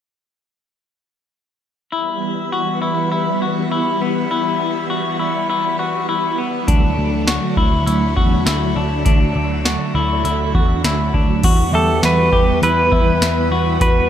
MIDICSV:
0, 0, Header, 1, 7, 480
1, 0, Start_track
1, 0, Tempo, 594059
1, 1559, Time_signature, 4, 2, 24, 8
1, 11389, End_track
2, 0, Start_track
2, 0, Title_t, "Celesta"
2, 0, Program_c, 0, 8
2, 9479, Note_on_c, 0, 76, 57
2, 10432, Note_off_c, 0, 76, 0
2, 10442, Note_on_c, 0, 76, 50
2, 11389, Note_off_c, 0, 76, 0
2, 11389, End_track
3, 0, Start_track
3, 0, Title_t, "Electric slide guitar"
3, 0, Program_c, 1, 29
3, 9493, Note_on_c, 1, 69, 80
3, 9710, Note_off_c, 1, 69, 0
3, 9739, Note_on_c, 1, 71, 90
3, 10197, Note_off_c, 1, 71, 0
3, 10207, Note_on_c, 1, 71, 100
3, 11154, Note_off_c, 1, 71, 0
3, 11163, Note_on_c, 1, 71, 85
3, 11389, Note_off_c, 1, 71, 0
3, 11389, End_track
4, 0, Start_track
4, 0, Title_t, "Clean electric guitar"
4, 0, Program_c, 2, 27
4, 1554, Note_on_c, 2, 64, 63
4, 2037, Note_off_c, 2, 64, 0
4, 2040, Note_on_c, 2, 66, 71
4, 2273, Note_off_c, 2, 66, 0
4, 2276, Note_on_c, 2, 64, 67
4, 2508, Note_off_c, 2, 64, 0
4, 2518, Note_on_c, 2, 64, 74
4, 2759, Note_off_c, 2, 64, 0
4, 2762, Note_on_c, 2, 66, 61
4, 2999, Note_off_c, 2, 66, 0
4, 3002, Note_on_c, 2, 64, 65
4, 3241, Note_off_c, 2, 64, 0
4, 3245, Note_on_c, 2, 59, 55
4, 3482, Note_off_c, 2, 59, 0
4, 3482, Note_on_c, 2, 64, 68
4, 3956, Note_off_c, 2, 64, 0
4, 3959, Note_on_c, 2, 66, 72
4, 4194, Note_off_c, 2, 66, 0
4, 4197, Note_on_c, 2, 64, 69
4, 4431, Note_off_c, 2, 64, 0
4, 4441, Note_on_c, 2, 64, 64
4, 4677, Note_off_c, 2, 64, 0
4, 4680, Note_on_c, 2, 66, 66
4, 4916, Note_off_c, 2, 66, 0
4, 4920, Note_on_c, 2, 64, 71
4, 5158, Note_on_c, 2, 59, 54
4, 5160, Note_off_c, 2, 64, 0
4, 5392, Note_off_c, 2, 59, 0
4, 5395, Note_on_c, 2, 62, 69
4, 5875, Note_on_c, 2, 66, 70
4, 5877, Note_off_c, 2, 62, 0
4, 6116, Note_off_c, 2, 66, 0
4, 6119, Note_on_c, 2, 64, 68
4, 6345, Note_off_c, 2, 64, 0
4, 6355, Note_on_c, 2, 64, 70
4, 6594, Note_off_c, 2, 64, 0
4, 6597, Note_on_c, 2, 66, 66
4, 6833, Note_off_c, 2, 66, 0
4, 6836, Note_on_c, 2, 64, 70
4, 7078, Note_off_c, 2, 64, 0
4, 7079, Note_on_c, 2, 62, 63
4, 7304, Note_off_c, 2, 62, 0
4, 7314, Note_on_c, 2, 62, 73
4, 7797, Note_off_c, 2, 62, 0
4, 7798, Note_on_c, 2, 66, 64
4, 8036, Note_off_c, 2, 66, 0
4, 8040, Note_on_c, 2, 64, 69
4, 8270, Note_off_c, 2, 64, 0
4, 8279, Note_on_c, 2, 64, 66
4, 8519, Note_off_c, 2, 64, 0
4, 8523, Note_on_c, 2, 66, 61
4, 8760, Note_off_c, 2, 66, 0
4, 8763, Note_on_c, 2, 64, 67
4, 9000, Note_on_c, 2, 62, 57
4, 9002, Note_off_c, 2, 64, 0
4, 9240, Note_off_c, 2, 62, 0
4, 9246, Note_on_c, 2, 66, 75
4, 9483, Note_off_c, 2, 66, 0
4, 9486, Note_on_c, 2, 67, 63
4, 9717, Note_off_c, 2, 67, 0
4, 9720, Note_on_c, 2, 66, 73
4, 9956, Note_off_c, 2, 66, 0
4, 9959, Note_on_c, 2, 67, 70
4, 10199, Note_off_c, 2, 67, 0
4, 10204, Note_on_c, 2, 64, 69
4, 10426, Note_off_c, 2, 64, 0
4, 10436, Note_on_c, 2, 64, 71
4, 10918, Note_off_c, 2, 64, 0
4, 10921, Note_on_c, 2, 66, 67
4, 11150, Note_off_c, 2, 66, 0
4, 11160, Note_on_c, 2, 66, 72
4, 11389, Note_off_c, 2, 66, 0
4, 11389, End_track
5, 0, Start_track
5, 0, Title_t, "String machine"
5, 0, Program_c, 3, 50
5, 1568, Note_on_c, 3, 52, 67
5, 1568, Note_on_c, 3, 55, 60
5, 1571, Note_on_c, 3, 59, 78
5, 5371, Note_off_c, 3, 52, 0
5, 5372, Note_off_c, 3, 55, 0
5, 5373, Note_off_c, 3, 59, 0
5, 5385, Note_on_c, 3, 54, 63
5, 5386, Note_on_c, 3, 50, 70
5, 5387, Note_on_c, 3, 57, 73
5, 9200, Note_off_c, 3, 54, 0
5, 9201, Note_off_c, 3, 50, 0
5, 9201, Note_off_c, 3, 57, 0
5, 9242, Note_on_c, 3, 55, 70
5, 9242, Note_on_c, 3, 59, 71
5, 9247, Note_on_c, 3, 52, 73
5, 11389, Note_off_c, 3, 52, 0
5, 11389, Note_off_c, 3, 55, 0
5, 11389, Note_off_c, 3, 59, 0
5, 11389, End_track
6, 0, Start_track
6, 0, Title_t, "Picked electric bass"
6, 0, Program_c, 4, 34
6, 5398, Note_on_c, 4, 38, 92
6, 5610, Note_off_c, 4, 38, 0
6, 5640, Note_on_c, 4, 38, 77
6, 5957, Note_off_c, 4, 38, 0
6, 6118, Note_on_c, 4, 38, 92
6, 6330, Note_off_c, 4, 38, 0
6, 6361, Note_on_c, 4, 38, 98
6, 6572, Note_off_c, 4, 38, 0
6, 6600, Note_on_c, 4, 40, 73
6, 6811, Note_off_c, 4, 40, 0
6, 6836, Note_on_c, 4, 38, 84
6, 7049, Note_off_c, 4, 38, 0
6, 7081, Note_on_c, 4, 38, 77
6, 7292, Note_off_c, 4, 38, 0
6, 7320, Note_on_c, 4, 38, 82
6, 7531, Note_off_c, 4, 38, 0
6, 7561, Note_on_c, 4, 38, 85
6, 7877, Note_off_c, 4, 38, 0
6, 8038, Note_on_c, 4, 38, 94
6, 8250, Note_off_c, 4, 38, 0
6, 8279, Note_on_c, 4, 38, 81
6, 8490, Note_off_c, 4, 38, 0
6, 8523, Note_on_c, 4, 40, 78
6, 8733, Note_off_c, 4, 40, 0
6, 8760, Note_on_c, 4, 38, 82
6, 8971, Note_off_c, 4, 38, 0
6, 9004, Note_on_c, 4, 38, 79
6, 9213, Note_off_c, 4, 38, 0
6, 9241, Note_on_c, 4, 40, 90
6, 9452, Note_off_c, 4, 40, 0
6, 9476, Note_on_c, 4, 40, 83
6, 9689, Note_off_c, 4, 40, 0
6, 9719, Note_on_c, 4, 40, 74
6, 9930, Note_off_c, 4, 40, 0
6, 9956, Note_on_c, 4, 40, 81
6, 10169, Note_off_c, 4, 40, 0
6, 10198, Note_on_c, 4, 40, 89
6, 10410, Note_off_c, 4, 40, 0
6, 10441, Note_on_c, 4, 40, 93
6, 10652, Note_off_c, 4, 40, 0
6, 10677, Note_on_c, 4, 40, 81
6, 10889, Note_off_c, 4, 40, 0
6, 10914, Note_on_c, 4, 40, 76
6, 11128, Note_off_c, 4, 40, 0
6, 11159, Note_on_c, 4, 40, 93
6, 11370, Note_off_c, 4, 40, 0
6, 11389, End_track
7, 0, Start_track
7, 0, Title_t, "Drums"
7, 5399, Note_on_c, 9, 36, 88
7, 5399, Note_on_c, 9, 42, 57
7, 5480, Note_off_c, 9, 36, 0
7, 5480, Note_off_c, 9, 42, 0
7, 5879, Note_on_c, 9, 38, 88
7, 5882, Note_on_c, 9, 42, 67
7, 5959, Note_off_c, 9, 38, 0
7, 5962, Note_off_c, 9, 42, 0
7, 6117, Note_on_c, 9, 36, 77
7, 6198, Note_off_c, 9, 36, 0
7, 6363, Note_on_c, 9, 42, 57
7, 6443, Note_off_c, 9, 42, 0
7, 6601, Note_on_c, 9, 36, 76
7, 6682, Note_off_c, 9, 36, 0
7, 6840, Note_on_c, 9, 38, 89
7, 6845, Note_on_c, 9, 42, 57
7, 6921, Note_off_c, 9, 38, 0
7, 6926, Note_off_c, 9, 42, 0
7, 7318, Note_on_c, 9, 42, 61
7, 7320, Note_on_c, 9, 36, 100
7, 7399, Note_off_c, 9, 42, 0
7, 7401, Note_off_c, 9, 36, 0
7, 7801, Note_on_c, 9, 38, 91
7, 7804, Note_on_c, 9, 42, 72
7, 7882, Note_off_c, 9, 38, 0
7, 7885, Note_off_c, 9, 42, 0
7, 8282, Note_on_c, 9, 42, 57
7, 8363, Note_off_c, 9, 42, 0
7, 8522, Note_on_c, 9, 36, 75
7, 8603, Note_off_c, 9, 36, 0
7, 8763, Note_on_c, 9, 38, 86
7, 8768, Note_on_c, 9, 42, 55
7, 8843, Note_off_c, 9, 38, 0
7, 8848, Note_off_c, 9, 42, 0
7, 9003, Note_on_c, 9, 36, 69
7, 9084, Note_off_c, 9, 36, 0
7, 9239, Note_on_c, 9, 42, 68
7, 9239, Note_on_c, 9, 49, 74
7, 9241, Note_on_c, 9, 36, 95
7, 9320, Note_off_c, 9, 42, 0
7, 9320, Note_off_c, 9, 49, 0
7, 9322, Note_off_c, 9, 36, 0
7, 9721, Note_on_c, 9, 38, 87
7, 9725, Note_on_c, 9, 42, 70
7, 9802, Note_off_c, 9, 38, 0
7, 9805, Note_off_c, 9, 42, 0
7, 9958, Note_on_c, 9, 36, 81
7, 10039, Note_off_c, 9, 36, 0
7, 10204, Note_on_c, 9, 42, 55
7, 10284, Note_off_c, 9, 42, 0
7, 10441, Note_on_c, 9, 36, 82
7, 10522, Note_off_c, 9, 36, 0
7, 10682, Note_on_c, 9, 38, 90
7, 10687, Note_on_c, 9, 42, 64
7, 10762, Note_off_c, 9, 38, 0
7, 10767, Note_off_c, 9, 42, 0
7, 11158, Note_on_c, 9, 36, 100
7, 11159, Note_on_c, 9, 42, 68
7, 11239, Note_off_c, 9, 36, 0
7, 11240, Note_off_c, 9, 42, 0
7, 11389, End_track
0, 0, End_of_file